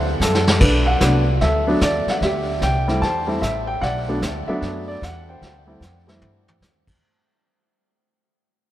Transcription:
Already playing: upright bass D2, grand piano A4 C5 F#5
0.20 upright bass F#2, grand piano A4, snare, hi-hat pedal
0.35 snare
0.47 snare
0.60 upright bass B1, grand piano D4 B4, brush sweep, kick, snare, crash
0.86 grand piano F#5
1.00 upright bass C2, grand piano F#3 A3 B3 D4, kick, snare, hi-hat pedal
1.41 upright bass D2, grand piano A4 E5, brush sweep, kick, snare
1.67 grand piano F#3 A3 B3 D4
1.81 upright bass D#2, grand piano D5, kick, snare, hi-hat pedal
2.06 grand piano F#5, muted upright bass stroke, snare
2.21 upright bass D2, grand piano G4 E5, brush sweep, kick, snare
2.61 upright bass C2, grand piano G5, kick, snare, hi-hat pedal
2.88 grand piano G3 A3 C4 E4, snare
3.01 upright bass E2, grand piano C5 A5, brush sweep, kick, snare
3.27 grand piano G3 A3 C4 E4
3.42 upright bass A1, grand piano E5, kick, snare, hi-hat pedal
3.67 grand piano G5
3.81 upright bass B1, grand piano D5 F#5, brush sweep, kick, snare
4.08 grand piano F#3 A3 B3 D4
4.22 upright bass D2, kick, snare, hi-hat pedal
4.47 grand piano F#3 A3 B3 D4 E5, muted upright bass stroke
4.62 upright bass F#2, brush sweep, kick, snare
4.88 grand piano D5
5.02 upright bass E2, grand piano F#5, kick, snare, hi-hat pedal
5.29 grand piano C5 G5
5.41 upright bass D2, brush sweep, kick, snare
5.67 grand piano G3 A3 C4 E4
5.81 upright bass F2, snare, hi-hat pedal
6.07 grand piano G3 A3 C4 E4, snare
6.21 upright bass G2, floor tom
6.48 floor tom
6.61 upright bass D#2, snare, hi-hat pedal
6.87 kick, crash

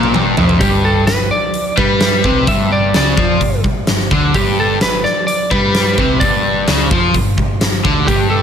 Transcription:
Already playing: picked electric bass A#1, overdriven electric guitar A#2
0.03 high tom
0.14 picked electric bass G1, overdriven electric guitar G2, mid tom
0.37 picked electric bass F1, overdriven electric guitar F2, floor tom
0.49 floor tom
0.60 picked electric bass G1, overdriven electric guitar G2, lead electric guitar G4, kick, open hi-hat
0.85 lead electric guitar A4
1.07 picked electric bass G1, overdriven electric guitar G2, lead electric guitar B4, snare, open hi-hat
1.31 lead electric guitar D5
1.54 open hi-hat
1.77 picked electric bass G2, overdriven electric guitar G3, lead electric guitar B4, kick
2.01 snare, open hi-hat
2.24 picked electric bass C2, overdriven electric guitar C3, kick
2.47 picked electric bass G1, overdriven electric guitar G2, lead electric guitar E5, kick, open hi-hat
2.72 lead electric guitar D5
2.94 picked electric bass C#2, overdriven electric guitar C#3, lead electric guitar D5, snare, open hi-hat
3.17 picked electric bass F2, overdriven electric guitar F3, kick
3.41 picked electric bass G1, overdriven electric guitar G2, kick, open hi-hat
3.64 picked electric bass G1, overdriven electric guitar G2, kick
3.87 picked electric bass G1, overdriven electric guitar G2, snare, open hi-hat
3.99 snare
4.11 picked electric bass D2, overdriven electric guitar D3, kick
4.34 picked electric bass G1, overdriven electric guitar G2, lead electric guitar G4, kick, open hi-hat
4.60 lead electric guitar A4
4.81 picked electric bass G1, overdriven electric guitar G2, lead electric guitar B4, snare, open hi-hat
5.04 lead electric guitar D5, snare
5.27 lead electric guitar D5, open hi-hat
5.51 picked electric bass G2, overdriven electric guitar G3, lead electric guitar B4, kick
5.75 snare, open hi-hat
5.98 picked electric bass C2, overdriven electric guitar C3, kick
6.20 picked electric bass G1, overdriven electric guitar G2, lead electric guitar D5, kick, open hi-hat
6.68 picked electric bass C#2, overdriven electric guitar C#3, snare, open hi-hat
6.91 picked electric bass F2, overdriven electric guitar F3, kick
7.14 picked electric bass G1, overdriven electric guitar G2, kick, open hi-hat
7.38 picked electric bass G1, overdriven electric guitar G2, kick
7.61 picked electric bass G1, overdriven electric guitar G2, snare, open hi-hat
7.73 snare
7.85 picked electric bass D2, overdriven electric guitar D3, kick
8.07 picked electric bass G1, overdriven electric guitar G2, lead electric guitar G4, kick, open hi-hat
8.30 lead electric guitar A4

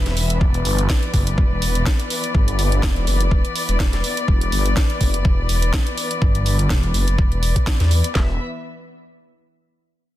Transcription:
Already playing: string section E3 B3 B4 E5
0.06 detuned saw bass E1, snare, closed hi-hat
0.17 open hi-hat
0.30 closed hi-hat
0.41 detuned saw bass E1, string section D5, kick
0.54 closed hi-hat
0.65 detuned saw bass G1, open hi-hat
0.78 closed hi-hat
0.89 kick, snare
1.03 closed hi-hat
1.14 detuned saw bass F#1, kick, open hi-hat
1.27 closed hi-hat
1.38 detuned saw bass E1, kick
1.62 detuned saw bass E1, open hi-hat
1.75 closed hi-hat
1.86 kick, snare
2.00 closed hi-hat
2.10 open hi-hat
2.24 closed hi-hat
2.35 detuned saw bass G1, kick
2.48 closed hi-hat
2.59 open hi-hat
2.72 closed hi-hat
2.83 detuned saw bass E1, kick, snare
2.96 closed hi-hat
3.07 detuned saw bass F#1, open hi-hat
3.20 closed hi-hat
3.31 detuned saw bass E1, kick
3.45 closed hi-hat
3.56 open hi-hat
3.69 detuned saw bass E1, closed hi-hat
3.80 kick, snare
3.93 snare, closed hi-hat
4.04 open hi-hat
4.17 closed hi-hat
4.28 detuned saw bass E1, kick
4.41 closed hi-hat
4.52 detuned saw bass G1, open hi-hat
4.66 closed hi-hat
4.77 kick, snare
4.90 closed hi-hat
5.01 detuned saw bass F#1, kick, open hi-hat
5.14 closed hi-hat
5.25 detuned saw bass E1, kick
5.49 detuned saw bass E1, open hi-hat
5.62 closed hi-hat
5.73 kick, snare
5.87 closed hi-hat
5.98 open hi-hat
6.11 closed hi-hat
6.22 detuned saw bass G1, kick
6.35 closed hi-hat
6.46 open hi-hat
6.59 closed hi-hat
6.70 detuned saw bass E1, kick, snare
6.83 closed hi-hat
6.94 detuned saw bass F#1, open hi-hat
7.08 closed hi-hat
7.18 detuned saw bass E1, kick
7.32 detuned saw bass E1, closed hi-hat
7.43 open hi-hat
7.56 kick, closed hi-hat
7.67 kick, snare
7.80 detuned saw bass E2, snare, closed hi-hat
7.91 open hi-hat
8.04 closed hi-hat
8.15 detuned saw bass E1, string section E3 B3 B4 E5, kick, snare

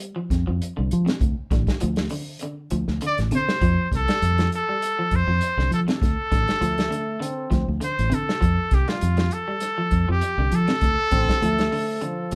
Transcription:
Already playing: clean electric guitar G3
0.00 closed hi-hat
0.16 clean electric guitar F3
0.30 fingered electric bass F2, kick, snare, closed hi-hat
0.47 fingered electric bass F2, clean electric guitar F3
0.62 closed hi-hat
0.77 fingered electric bass C2, clean electric guitar D3
0.91 fingered electric bass F3, closed hi-hat
1.06 clean electric guitar C3, snare, closed hi-hat
1.21 fingered electric bass D2, kick, closed hi-hat
1.51 fingered electric bass A1, clean electric guitar D3, kick, snare, closed hi-hat
1.67 kick, snare, closed hi-hat
1.80 fingered electric bass D2, clean electric guitar F3, closed hi-hat
1.96 snare, closed hi-hat
2.09 clean electric guitar D3, open hi-hat
2.39 clean electric guitar D3, closed hi-hat
2.70 fingered electric bass D2, clean electric guitar F3, closed hi-hat
2.88 fingered electric bass D2, snare
3.01 clean electric guitar D3, closed hi-hat
3.07 trumpet D5
3.18 fingered electric bass A1, snare, closed hi-hat
3.31 clean electric guitar C3, fingered electric bass D3, closed hi-hat
3.35 trumpet C5
3.49 snare
3.61 fingered electric bass F2, clean electric guitar F3, kick, closed hi-hat
3.92 fingered electric bass C2, kick, snare, closed hi-hat
3.97 trumpet A4
4.08 clean electric guitar G3, snare, closed hi-hat
4.22 fingered electric bass F2, closed hi-hat
4.38 clean electric guitar F3, snare, closed hi-hat
4.52 trumpet A4, closed hi-hat
4.69 clean electric guitar G3
4.82 closed hi-hat
4.99 clean electric guitar F3
5.11 fingered electric bass F2, kick, closed hi-hat
5.16 trumpet C5
5.27 fingered electric bass F2, clean electric guitar F3
5.41 closed hi-hat
5.57 fingered electric bass C2, clean electric guitar D3, snare
5.71 fingered electric bass F3, trumpet A4, closed hi-hat
5.88 clean electric guitar C3, trumpet A4, snare, closed hi-hat
6.02 fingered electric bass D2, kick, snare, closed hi-hat
6.32 fingered electric bass A1, clean electric guitar D3, kick, snare, closed hi-hat
6.48 snare, closed hi-hat
6.61 fingered electric bass D2, clean electric guitar F3, bass trombone A3, closed hi-hat
6.78 snare, closed hi-hat
6.91 clean electric guitar D3, closed hi-hat
7.20 clean electric guitar D3, bass trombone C4, closed hi-hat
7.50 fingered electric bass D2, clean electric guitar F3, kick, snare, closed hi-hat
7.68 fingered electric bass D2
7.81 clean electric guitar D3, trumpet C5, closed hi-hat
7.99 fingered electric bass A1, closed hi-hat
8.10 clean electric guitar C3, fingered electric bass D3, closed hi-hat
8.14 trumpet A4
8.29 snare
8.41 fingered electric bass F2, clean electric guitar F3, kick, closed hi-hat
8.71 fingered electric bass C2, trumpet G4, kick, snare, closed hi-hat
8.88 clean electric guitar G3, trumpet F4, snare, closed hi-hat
9.01 fingered electric bass F2, closed hi-hat
9.17 clean electric guitar F3, snare, closed hi-hat
9.31 trumpet A4, closed hi-hat
9.48 clean electric guitar G3
9.60 snare, closed hi-hat
9.78 clean electric guitar F3
9.91 fingered electric bass F2, kick, closed hi-hat
10.09 fingered electric bass F2, clean electric guitar F3, trumpet G4
10.21 closed hi-hat
10.38 fingered electric bass C2, clean electric guitar D3
10.52 fingered electric bass F3, trumpet A4, closed hi-hat
10.68 clean electric guitar C3, snare, closed hi-hat
10.81 fingered electric bass D2, kick, snare, closed hi-hat
11.11 fingered electric bass A1, clean electric guitar D3, bass trombone C4, kick, closed hi-hat
11.28 kick, snare, closed hi-hat
11.42 fingered electric bass D2, clean electric guitar F3, bass trombone A3, closed hi-hat
11.58 snare, closed hi-hat
11.72 clean electric guitar D3, open hi-hat
12.01 clean electric guitar D3, bass trombone F3, closed hi-hat
12.31 closed hi-hat

